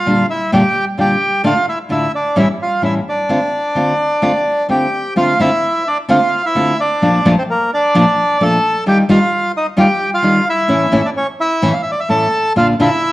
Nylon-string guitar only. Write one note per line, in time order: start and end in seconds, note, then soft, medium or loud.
0.06 0.23 A#2 medium
0.06 0.23 D3 medium
0.06 0.23 G3 medium
0.06 0.23 D4 medium
0.06 0.23 F4 medium
0.52 0.61 A#2 medium
0.52 0.61 D3 medium
0.52 0.61 G3 medium
0.52 0.61 D4 medium
0.52 0.61 F4 medium
0.97 1.14 A#2 medium
0.97 1.14 D3 medium
0.97 1.14 G3 medium
0.97 1.15 D4 medium
0.97 1.15 F4 medium
1.43 1.52 A2 medium
1.43 1.53 D3 medium
1.43 1.53 A3 medium
1.43 1.53 D4 medium
1.43 1.53 F4 medium
1.89 2.06 A2 medium
1.89 2.07 D3 medium
1.89 2.07 A3 medium
1.89 2.07 D4 medium
1.89 2.07 F4 medium
2.36 2.45 A2 medium
2.36 2.45 E3 medium
2.36 2.45 G3 medium
2.36 2.45 C#4 loud
2.36 2.45 E4 loud
2.82 2.99 A2 medium
2.82 2.99 E3 medium
2.82 2.99 G3 medium
2.82 2.99 C#4 medium
2.82 2.99 E4 medium
3.29 3.38 D3 medium
3.29 3.38 A3 medium
3.29 3.38 C4 medium
3.29 3.38 F4 medium
3.75 3.92 D3 medium
3.75 3.92 A3 medium
3.75 3.92 C4 medium
3.75 3.93 F4 medium
4.22 4.31 D3 medium
4.22 4.31 A3 medium
4.22 4.31 C4 medium
4.22 4.31 F4 medium
4.69 4.86 D3 medium
4.69 4.86 A3 medium
4.69 4.86 C4 medium
4.69 4.87 F4 medium
5.16 5.33 D3 medium
5.16 5.33 A3 medium
5.16 5.33 C4 medium
5.16 5.34 F4 medium
5.39 5.48 D3 medium
5.39 5.49 A3 medium
5.39 5.49 C4 medium
5.39 5.49 F4 loud
6.09 6.18 D3 loud
6.09 6.18 A3 medium
6.09 6.18 C4 loud
6.09 6.18 F4 loud
6.55 6.72 D3 medium
6.55 6.73 A3 medium
6.55 6.73 C4 medium
6.55 6.73 F4 medium
7.02 7.19 A#2 medium
7.02 7.19 F3 medium
7.02 7.19 A3 medium
7.02 7.19 D4 medium
7.02 7.19 F4 medium
7.26 7.34 A#2 medium
7.26 7.34 F3 medium
7.26 7.34 A3 medium
7.26 7.35 D4 medium
7.26 7.35 F4 medium
7.95 8.03 A#2 medium
7.95 8.03 F3 medium
7.95 8.04 A3 medium
7.95 8.04 D4 medium
7.95 8.04 F4 loud
8.40 8.57 A#2 medium
8.40 8.57 F3 medium
8.40 8.57 A3 medium
8.40 8.57 D4 medium
8.40 8.57 F4 medium
8.86 9.02 D#3 medium
8.86 9.03 G3 medium
8.86 9.03 D#4 medium
8.86 9.03 F4 medium
9.09 9.17 D#3 medium
9.09 9.18 G3 medium
9.09 9.18 D#4 loud
9.09 9.18 F4 loud
9.77 9.86 D#3 medium
9.77 9.86 G3 loud
9.77 9.86 D#4 loud
9.77 9.86 F4 loud
10.23 10.40 D#3 medium
10.23 10.40 G3 medium
10.23 10.40 D#4 medium
10.23 10.40 F4 medium
10.68 10.85 A2 medium
10.68 10.86 E3 medium
10.68 10.86 A3 medium
10.68 10.86 C#4 medium
10.68 10.86 E4 medium
10.92 11.01 A2 medium
10.92 11.01 E3 medium
10.92 11.01 A3 medium
10.92 11.01 C#4 medium
10.92 11.01 E4 medium
11.62 11.71 A2 loud
11.62 11.71 E3 medium
11.62 11.71 A3 medium
11.62 11.71 C#4 loud
11.62 11.71 E4 loud
12.09 12.26 A2 medium
12.09 12.26 E3 medium
12.09 12.26 A3 medium
12.09 12.26 C#4 medium
12.09 12.26 E4 medium
12.56 12.73 A#2 medium
12.56 12.73 D3 medium
12.56 12.73 A#3 medium
12.56 12.73 D4 medium
12.56 12.73 F4 medium
12.79 12.88 A#2 medium
12.79 12.88 D3 medium
12.79 12.88 A#3 medium
12.79 12.88 D4 medium
12.79 12.89 F4 medium